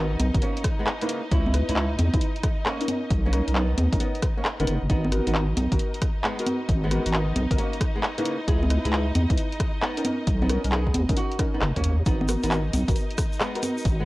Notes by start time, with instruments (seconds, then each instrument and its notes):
Already playing: wobble bass G#1, nylon-string guitar B3 D#4, violin section D#4 D#5
0.20 wobble bass B1, closed hi-hat, high conga
0.34 wobble bass G#1, synth stab B3 F#4 A#4, kick, closed hi-hat
0.42 nylon-string guitar A#3 C#4, closed hi-hat
0.57 closed hi-hat
0.64 kick, cross-stick, closed hi-hat
0.79 nylon-string guitar G#3 B3
0.87 cross-stick, clap
1.01 nylon-string guitar C#3 A#3, synth stab D#4 E4 B4, closed hi-hat
1.09 closed hi-hat
1.31 wobble bass C#2, nylon-string guitar C#4 E4, kick, closed hi-hat
1.46 high conga
1.54 synth stab D#4 E4 B4, cross-stick, closed hi-hat
1.69 wobble bass C#2, nylon-string guitar C#4 E4, synth stab D#4 E4 B4, closed hi-hat
1.76 clap
1.99 wobble bass E2, closed hi-hat, high conga
2.14 wobble bass C#2, synth stab D#4 E4 B4, kick, closed hi-hat
2.21 closed hi-hat
2.36 closed hi-hat
2.43 kick, cross-stick, closed hi-hat
2.66 nylon-string guitar A#3 C#4, cross-stick, clap
2.81 synth stab C#4 D#4 A#4, closed hi-hat
2.88 closed hi-hat, high conga
3.11 wobble bass B1, kick, closed hi-hat
3.26 nylon-string guitar A#3 C#4
3.33 synth stab C#4 D#4 A#4, cross-stick, closed hi-hat
3.48 wobble bass B1, synth stab C#4 D#4 A#4, closed hi-hat
3.55 nylon-string guitar B3 D#4, clap
3.78 wobble bass D#2, closed hi-hat, high conga
3.93 wobble bass B1, synth stab C#4 D#4 A#4, kick, closed hi-hat
4.00 nylon-string guitar B3 D#4, closed hi-hat
4.15 closed hi-hat
4.22 kick, cross-stick, closed hi-hat
4.37 nylon-string guitar A#3 C#4
4.45 cross-stick, clap
4.60 wobble bass F#1, nylon-string guitar D#3 B3, synth stab C#4 D#4 A#4, closed hi-hat
4.67 wobble bass F#1, closed hi-hat
4.82 wobble bass F#1
4.90 wobble bass G#1, nylon-string guitar B3 D#4, violin section D#4 D#5, kick, closed hi-hat
5.05 high conga
5.12 synth stab B3 F#4 A#4, cross-stick, closed hi-hat
5.27 wobble bass G#1, nylon-string guitar B3 D#4, synth stab B3 F#4 A#4, closed hi-hat
5.35 clap
5.57 wobble bass B1, closed hi-hat, high conga
5.72 wobble bass G#1, synth stab B3 F#4 A#4, kick, closed hi-hat
5.79 closed hi-hat
5.94 closed hi-hat
6.02 kick, cross-stick, closed hi-hat
6.24 nylon-string guitar G#3 B3, cross-stick, clap
6.39 synth stab B3 F#4 A#4, closed hi-hat
6.46 closed hi-hat, high conga
6.69 wobble bass G#1, kick, closed hi-hat
6.84 nylon-string guitar G#3 B3
6.91 synth stab B3 F#4 A#4, cross-stick, closed hi-hat
7.06 wobble bass G#1, synth stab B3 F#4 A#4, closed hi-hat
7.14 nylon-string guitar B3 D#4, clap
7.36 wobble bass B1, closed hi-hat, high conga
7.51 wobble bass G#1, synth stab B3 F#4 A#4, kick, closed hi-hat
7.58 nylon-string guitar A#3 C#4, closed hi-hat
7.73 closed hi-hat
7.81 kick, cross-stick, closed hi-hat
7.96 nylon-string guitar G#3 B3
8.03 cross-stick, clap
8.18 nylon-string guitar C#3 A#3, synth stab D#4 E4 B4, closed hi-hat
8.25 closed hi-hat
8.48 wobble bass C#2, nylon-string guitar E4 G#4, kick, closed hi-hat
8.63 high conga
8.70 synth stab D#4 E4 B4, cross-stick, closed hi-hat
8.85 wobble bass C#2, synth stab D#4 E4 B4, nylon-string guitar E4 G#4, closed hi-hat
8.93 clap
9.15 wobble bass E2, closed hi-hat, high conga
9.30 wobble bass C#2, synth stab D#4 E4 B4, kick, closed hi-hat
9.37 closed hi-hat
9.52 closed hi-hat
9.60 kick, cross-stick, closed hi-hat
9.82 nylon-string guitar B3 D#4, cross-stick, clap
9.97 synth stab C#4 D#4 A#4, closed hi-hat
10.05 closed hi-hat, high conga
10.27 wobble bass B1, kick, closed hi-hat
10.42 nylon-string guitar B3 D#4, high conga
10.49 synth stab C#4 D#4 A#4, cross-stick, closed hi-hat
10.64 wobble bass B1, synth stab C#4 D#4 A#4, closed hi-hat
10.72 nylon-string guitar B3 G#4, clap
10.87 kick
10.94 wobble bass D#2, closed hi-hat, high conga
11.09 wobble bass B1, synth stab C#4 D#4 A#4, kick, closed hi-hat
11.17 nylon-string guitar D#4 F#4, closed hi-hat
11.32 closed hi-hat
11.39 synth stab C#4 D#4 A#4, kick, cross-stick, closed hi-hat
11.54 nylon-string guitar B3 D#4
11.61 wobble bass F#1, cross-stick, clap
11.76 wobble bass D#2, nylon-string guitar A#3 C#4, kick, closed hi-hat
11.84 wobble bass D#2, closed hi-hat
12.06 wobble bass G#1, nylon-string guitar B3 D#4, violin section D#4 D#5, kick, closed hi-hat, shaker
12.21 high conga
12.28 synth stab B3 F#4 A#4, cross-stick, closed hi-hat, shaker
12.43 wobble bass G#1, nylon-string guitar B3 D#4, synth stab B3 F#4 A#4, closed hi-hat, shaker
12.51 clap, shaker
12.73 wobble bass B1, closed hi-hat, high conga, shaker
12.88 wobble bass G#1, synth stab B3 F#4 A#4, kick, closed hi-hat, shaker
12.96 closed hi-hat, shaker
13.11 closed hi-hat
13.18 kick, cross-stick, closed hi-hat, shaker
13.33 shaker
13.40 nylon-string guitar G#3 B3, cross-stick, clap, shaker
13.55 synth stab B3 F#4 A#4, closed hi-hat
13.63 closed hi-hat, high conga, shaker
13.78 shaker
13.85 wobble bass G#1, kick, closed hi-hat
14.00 nylon-string guitar G#3 B3